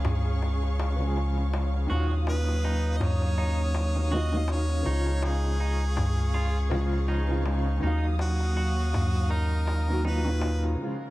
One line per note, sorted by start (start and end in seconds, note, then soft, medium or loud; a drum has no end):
0.00 1.87 C#2 medium
0.00 0.73 C#3 medium
0.00 0.75 F3 medium
0.00 0.76 G#3 medium
0.00 10.79 C#4 medium
0.00 0.78 F4 medium
0.00 1.87 G#4 medium
0.00 10.79 C#5 medium
0.00 7.78 F5 medium
0.00 1.87 C#6 medium
0.05 darbuka tek medium
0.05 darbuka dum medium
0.26 darbuka tek soft
0.42 darbuka tek medium
0.63 darbuka tek soft
0.79 darbuka tek medium
0.96 1.84 C#3 medium
0.96 1.86 F3 medium
1.00 1.87 G#3 medium
1.00 darbuka tek soft
1.05 1.89 G#4 medium
1.17 darbuka tek soft
1.38 darbuka tek soft
1.54 darbuka tek medium
1.74 darbuka tek soft
1.87 3.89 D#3 medium
1.87 3.91 F#3 medium
1.87 4.83 F#3 medium
1.87 2.13 F#4 medium
1.87 4.83 D#6 medium
1.91 4.84 D#2 medium
1.91 3.92 A#2 medium
1.91 darbuka tek soft
1.95 3.94 F5 medium
2.11 darbuka tek soft
2.27 2.98 B4 loud
2.27 darbuka tek medium
2.48 darbuka tek soft
2.64 3.35 D#4 medium
2.64 darbuka tek soft
2.97 3.04 D#5 medium
2.97 darbuka tek medium
2.97 darbuka dum medium
3.03 4.16 C#5 medium
3.22 darbuka tek soft
3.38 3.61 D#4 medium
3.38 darbuka tek soft
3.75 darbuka tek medium
3.95 4.08 D#3 medium
3.95 4.09 F#3 medium
3.95 4.09 A#3 medium
3.95 darbuka tek soft
3.99 4.10 F#4 medium
4.11 4.24 D#3 medium
4.11 4.25 F#3 medium
4.11 4.26 A#3 medium
4.11 4.35 F#4 medium
4.11 4.52 D#5 loud
4.11 darbuka tek soft
4.16 4.27 F4 medium
4.32 4.82 D#3 medium
4.32 4.83 F#3 medium
4.32 4.83 A#3 medium
4.32 darbuka tek soft
4.36 4.84 F5 medium
4.48 5.26 C#5 loud
4.48 darbuka tek medium
4.70 darbuka tek soft
4.82 6.66 C#3 medium
4.82 6.67 F3 medium
4.82 5.57 D#4 medium
4.82 darbuka tek soft
4.87 7.80 C#2 medium
4.87 6.69 G#3 medium
4.87 7.80 G#4 medium
4.87 7.80 C#6 medium
4.91 6.70 F4 medium
5.06 darbuka tek soft
5.22 7.46 G#4 medium
5.22 darbuka tek medium
5.44 darbuka tek soft
5.60 5.83 D#4 medium
5.60 darbuka tek soft
5.97 darbuka tek medium
5.97 darbuka dum medium
6.18 darbuka tek soft
6.34 6.57 F4 medium
6.34 darbuka tek soft
6.70 7.24 C#3 medium
6.70 7.24 F3 medium
6.70 7.25 G#3 medium
6.70 darbuka tek medium
6.74 7.26 F4 medium
6.93 darbuka tek soft
7.08 7.79 D#4 medium
7.08 darbuka tek soft
7.27 7.40 C#3 medium
7.27 7.41 F3 medium
7.27 7.42 G#3 medium
7.27 darbuka tek soft
7.32 7.43 F4 loud
7.43 7.77 C#3 medium
7.43 7.78 F3 medium
7.43 7.79 G#3 medium
7.43 darbuka tek medium
7.47 7.80 F4 medium
7.66 darbuka tek soft
7.78 9.81 D#3 medium
7.78 9.83 F#3 medium
7.83 10.76 D#2 medium
7.83 10.76 F#3 medium
7.83 9.84 A#3 medium
7.83 8.06 D#4 medium
7.83 10.76 F5 medium
7.83 9.86 F5 medium
7.83 10.76 D#6 medium
7.83 darbuka tek soft
8.04 darbuka tek soft
8.19 9.33 F#4 medium
8.19 darbuka tek medium
8.40 darbuka tek soft
8.57 8.80 F#4 medium
8.57 darbuka tek soft
8.94 darbuka tek medium
8.94 darbuka dum medium
9.15 darbuka tek soft
9.30 10.02 D#4 medium
9.30 10.05 A#4 medium
9.30 darbuka tek soft
9.67 darbuka tek medium
9.87 10.00 D#3 medium
9.87 10.01 F#3 medium
9.87 10.02 A#3 medium
9.87 darbuka tek soft
9.92 10.02 F#4 medium
10.03 10.17 D#3 medium
10.03 10.18 F#3 medium
10.03 10.18 A#3 medium
10.03 10.28 D#4 medium
10.03 10.76 B4 medium
10.03 darbuka tek soft
10.08 10.19 F4 medium
10.24 10.76 A#2 medium
10.24 10.74 D#3 medium
10.24 10.75 F#3 medium
10.24 darbuka tek soft
10.29 10.77 F4 medium
10.41 darbuka tek medium
10.64 darbuka tek soft
10.75 11.10 C#3 medium
10.75 11.10 F3 medium
10.81 11.10 G#3 medium
10.81 11.10 F4 medium